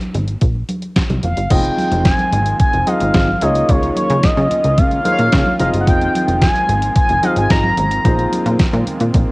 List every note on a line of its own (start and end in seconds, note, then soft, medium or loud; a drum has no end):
0.01 closed hi-hat soft
0.01 muted conga soft
0.01 high conga medium
0.14 0.37 G#1 medium
0.14 closed hi-hat medium
0.14 low conga medium
0.28 closed hi-hat soft
0.41 0.64 A#1 medium
0.41 kick loud
0.41 closed hi-hat medium
0.41 muted conga soft
0.55 muted conga soft
0.69 closed hi-hat medium
0.69 high conga medium
0.82 closed hi-hat soft
0.96 kick loud
0.96 snare loud
0.96 closed hi-hat medium
0.96 muted conga soft
1.10 1.21 C2 medium
1.10 closed hi-hat soft
1.10 muted conga soft
1.10 high conga medium
1.23 1.35 F1 loud
1.23 1.53 F5 medium
1.23 closed hi-hat medium
1.23 low conga medium
1.37 1.48 G1 medium
1.37 closed hi-hat medium
1.50 1.73 F1 loud
1.50 3.40 D#3 medium
1.50 3.40 F3 medium
1.50 3.40 G#3 medium
1.50 2.06 C4 medium
1.50 3.40 C4 medium
1.50 2.06 D#4 medium
1.50 8.01 F4 medium
1.50 2.06 F4 medium
1.50 2.07 G#4 medium
1.50 2.07 D#5 medium
1.50 2.05 G5 loud
1.50 kick loud
1.50 closed hi-hat medium
1.50 crash loud
1.50 muted conga soft
1.50 low conga medium
1.64 closed hi-hat soft
1.78 closed hi-hat medium
1.78 high conga medium
1.92 2.14 F1 loud
1.92 closed hi-hat soft
1.92 high conga medium
2.05 2.56 G#5 medium
2.05 kick loud
2.05 snare loud
2.05 closed hi-hat medium
2.19 closed hi-hat soft
2.19 muted conga soft
2.19 high conga medium
2.33 2.55 G#1 loud
2.33 closed hi-hat medium
2.33 low conga medium
2.46 closed hi-hat medium
2.59 2.89 G#5 loud
2.59 kick loud
2.59 closed hi-hat medium
2.59 muted conga soft
2.73 2.85 F1 medium
2.73 closed hi-hat soft
2.87 3.29 C4 medium
2.87 3.29 D#4 medium
2.87 3.29 F4 medium
2.87 3.29 G#4 medium
2.87 3.29 D#5 medium
2.87 3.43 F5 loud
2.87 closed hi-hat medium
2.87 high conga medium
3.00 3.12 G#1 loud
3.00 closed hi-hat medium
3.14 3.36 G#1 loud
3.14 kick loud
3.14 snare loud
3.14 closed hi-hat loud
3.28 high conga medium
3.41 3.64 C#2 loud
3.41 9.32 D#3 medium
3.41 8.01 G#3 medium
3.41 5.57 A#3 medium
3.41 4.29 A#3 medium
3.41 5.58 C#4 medium
3.41 4.29 D#4 medium
3.41 4.29 F4 medium
3.41 4.29 G#4 medium
3.41 4.29 C#5 medium
3.41 3.71 D#5 medium
3.41 closed hi-hat medium
3.41 low conga medium
3.55 closed hi-hat medium
3.69 3.91 C#2 loud
3.69 3.96 C#5 loud
3.69 kick loud
3.69 closed hi-hat medium
3.69 muted conga soft
3.69 low conga medium
3.82 closed hi-hat soft
3.82 muted conga soft
3.96 4.25 C#5 medium
3.96 closed hi-hat medium
3.96 high conga medium
4.10 4.21 C#3 loud
4.10 closed hi-hat medium
4.10 high conga medium
4.23 4.29 C#3 medium
4.23 4.80 D#5 medium
4.23 kick loud
4.23 snare loud
4.23 closed hi-hat medium
4.23 muted conga soft
4.37 4.48 C#3 loud
4.37 closed hi-hat soft
4.37 muted conga soft
4.37 high conga medium
4.51 closed hi-hat medium
4.51 low conga medium
4.64 4.79 C#2 medium
4.64 closed hi-hat medium
4.78 5.00 C#3 loud
4.78 5.04 F5 loud
4.78 kick loud
4.78 closed hi-hat medium
4.78 muted conga soft
4.91 closed hi-hat soft
4.91 muted conga soft
5.05 5.47 A#3 medium
5.05 5.47 D#4 medium
5.05 5.47 F4 medium
5.05 5.47 G#4 medium
5.05 5.12 C5 medium
5.05 5.56 F5 loud
5.05 closed hi-hat medium
5.05 high conga medium
5.12 5.50 C#5 medium
5.18 5.30 A#2 loud
5.18 closed hi-hat soft
5.32 5.44 C#3 loud
5.32 kick loud
5.32 snare loud
5.32 closed hi-hat medium
5.46 muted conga soft
5.46 high conga medium
5.59 5.71 F1 loud
5.59 8.03 F3 medium
5.59 6.47 C4 medium
5.59 9.32 C4 medium
5.59 6.47 D#4 medium
5.59 6.47 F4 medium
5.59 6.47 G#4 medium
5.59 6.47 D#5 medium
5.59 5.69 F5 loud
5.59 closed hi-hat medium
5.59 low conga medium
5.73 5.89 G1 medium
5.73 closed hi-hat medium
5.81 5.88 F#5 medium
5.87 6.09 F1 loud
5.87 6.42 G5 loud
5.87 kick loud
5.87 closed hi-hat medium
5.87 muted conga soft
5.87 low conga medium
6.01 closed hi-hat soft
6.01 muted conga soft
6.15 closed hi-hat medium
6.15 high conga medium
6.28 6.50 F1 loud
6.28 closed hi-hat soft
6.28 high conga medium
6.42 6.93 G#5 loud
6.42 kick loud
6.42 snare loud
6.42 closed hi-hat medium
6.55 closed hi-hat soft
6.55 high conga medium
6.69 6.91 G#1 loud
6.69 closed hi-hat medium
6.69 low conga medium
6.82 closed hi-hat medium
6.96 7.25 G#5 loud
6.96 kick loud
6.96 closed hi-hat medium
6.96 muted conga soft
7.09 7.21 F1 medium
7.09 closed hi-hat soft
7.09 muted conga soft
7.23 7.65 C4 medium
7.23 7.65 D#4 medium
7.23 7.65 F4 medium
7.23 7.65 G#4 medium
7.23 7.65 D#5 medium
7.23 7.37 F5 loud
7.23 closed hi-hat medium
7.23 high conga medium
7.36 7.48 G#1 medium
7.36 7.50 G#5 loud
7.36 closed hi-hat medium
7.50 7.73 G#1 loud
7.50 7.76 A#5 loud
7.50 kick loud
7.50 snare loud
7.50 closed hi-hat medium
7.64 muted conga soft
7.64 high conga medium
7.77 8.00 G#1 loud
7.77 8.56 A#5 loud
7.77 closed hi-hat medium
7.77 low conga medium
7.91 closed hi-hat medium
8.04 8.27 A#1 loud
8.04 9.32 G#3 medium
8.04 8.61 A#3 medium
8.04 9.32 A#3 medium
8.04 8.61 D#4 medium
8.04 8.61 F4 medium
8.04 9.32 F4 medium
8.04 8.61 G#4 medium
8.04 8.61 C5 medium
8.04 kick loud
8.04 closed hi-hat medium
8.04 muted conga soft
8.04 low conga medium
8.18 closed hi-hat soft
8.18 muted conga soft
8.32 closed hi-hat medium
8.32 high conga medium
8.46 8.57 A#2 loud
8.46 closed hi-hat soft
8.46 high conga medium
8.59 kick loud
8.59 snare loud
8.59 closed hi-hat medium
8.73 8.84 A#2 loud
8.73 closed hi-hat soft
8.73 muted conga soft
8.73 high conga medium
8.87 closed hi-hat medium
8.87 low conga medium
9.00 9.12 A#2 loud
9.00 closed hi-hat medium
9.14 9.25 A#1 loud
9.14 kick loud
9.14 closed hi-hat medium
9.14 muted conga soft